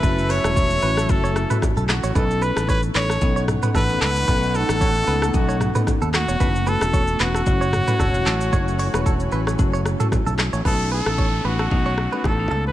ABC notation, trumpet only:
X:1
M:4/4
L:1/16
Q:"Swing 16ths" 1/4=113
K:Bmix
V:1 name="Trumpet"
B2 c6 A4 z2 F2 | A2 B2 B2 c4 z2 B2 B2- | B2 A6 F4 z2 F2- | F2 A4 F8- F2- |
F12 z4 | A2 A4 F4- F F A3 B |]